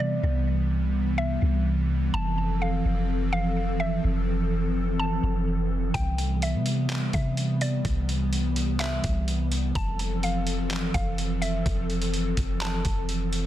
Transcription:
0.00 0.19 C3 loud
0.00 2.10 C3 medium
0.00 9.71 E3 medium
0.00 2.10 G3 medium
0.00 2.10 B3 medium
0.00 0.22 D5 medium
0.23 1.38 C2 loud
1.18 1.63 E5 medium
1.42 2.11 C2 loud
2.13 2.82 F1 loud
2.13 5.91 F3 medium
2.13 5.91 C4 medium
2.13 5.91 A4 medium
2.13 2.58 A5 loud
2.62 3.29 F5 medium
2.85 4.00 F1 loud
3.33 3.77 F5 medium
3.80 4.03 E5 medium
4.04 5.19 F1 loud
4.99 5.44 A5 medium
5.23 5.92 F1 loud
5.94 6.55 C2 loud
5.94 9.72 C3 medium
5.94 9.72 G3 medium
5.94 9.72 B3 medium
5.94 6.39 G5 loud
5.94 kick loud
5.94 closed hi-hat medium
6.18 closed hi-hat medium
6.42 7.10 E5 medium
6.42 closed hi-hat medium
6.54 7.11 C3 loud
6.66 closed hi-hat medium
6.90 clap loud
6.90 closed hi-hat medium
7.13 7.82 C3 loud
7.13 7.58 E5 medium
7.13 kick medium
7.13 closed hi-hat medium
7.37 closed hi-hat medium
7.61 7.84 D5 medium
7.61 closed hi-hat medium
7.85 9.00 C2 loud
7.85 kick loud
7.85 closed hi-hat medium
8.09 closed hi-hat medium
8.33 closed hi-hat medium
8.56 closed hi-hat medium
8.80 9.25 E5 medium
8.80 clap loud
8.80 closed hi-hat medium
9.04 9.73 C2 loud
9.04 kick medium
9.04 closed hi-hat medium
9.28 closed hi-hat medium
9.52 closed hi-hat medium
9.75 10.90 F1 loud
9.75 13.46 E3 medium
9.75 13.46 F3 medium
9.75 13.46 C4 medium
9.75 13.46 A4 medium
9.75 10.20 A5 loud
9.75 kick loud
9.75 closed hi-hat medium
9.99 closed hi-hat medium
10.23 10.91 F5 medium
10.23 closed hi-hat medium
10.47 closed hi-hat medium
10.71 clap loud
10.71 closed hi-hat medium
10.94 11.63 F1 loud
10.94 11.39 F5 medium
10.94 kick medium
10.94 closed hi-hat medium
11.18 closed hi-hat medium
11.42 11.64 E5 medium
11.42 closed hi-hat medium
11.66 12.34 F1 loud
11.66 kick loud
11.66 closed hi-hat medium
11.90 closed hi-hat soft
12.02 closed hi-hat medium
12.14 closed hi-hat medium
12.37 12.83 F1 loud
12.37 kick medium
12.37 closed hi-hat medium
12.61 13.06 A5 medium
12.61 clap loud
12.61 closed hi-hat medium
12.85 13.46 F1 loud
12.85 kick medium
12.85 closed hi-hat medium
13.09 closed hi-hat medium
13.33 closed hi-hat medium

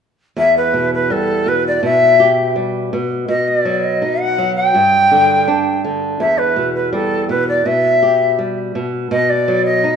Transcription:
0.37 1.79 E2 medium
0.37 0.55 E5 medium
0.57 0.90 B4 medium
0.73 1.09 B2 soft
0.94 1.13 B4 medium
1.10 1.46 G3 soft
1.10 1.49 A4 medium
1.46 1.82 B2 soft
1.46 1.65 B4 medium
1.67 1.83 D5 medium
1.83 2.92 B2 medium
1.83 2.53 E5 medium
2.20 2.55 G4 soft
2.56 2.91 G3 soft
2.93 3.27 B2 soft
3.28 4.71 B2 medium
3.28 3.49 D#5 medium
3.47 3.85 D5 medium
3.65 4.01 F#3 soft
3.83 4.21 D#5 medium
4.02 4.37 D#4 soft
4.19 4.55 F#5 medium
4.38 4.74 F#3 soft
4.55 5.79 G5 medium
4.75 6.16 G2 medium
5.12 5.47 D3 soft
5.48 5.83 D4 soft
5.84 6.20 D3 soft
6.20 7.62 E2 medium
6.20 6.39 E5 medium
6.38 6.74 B4 medium
6.56 6.92 B2 soft
6.75 6.92 B4 medium
6.93 7.28 G3 soft
6.93 7.27 A4 medium
7.29 7.64 B2 soft
7.29 7.46 B4 medium
7.48 7.68 D5 medium
7.65 8.74 B2 medium
7.65 8.39 E5 medium
8.02 8.38 G4 soft
8.39 8.74 G3 soft
8.75 9.10 B2 soft
9.11 9.96 B2 medium
9.11 9.31 D#5 medium
9.29 9.64 D5 medium
9.48 9.83 F#3 soft
9.65 9.96 D#5 medium
9.84 9.96 D#4 soft

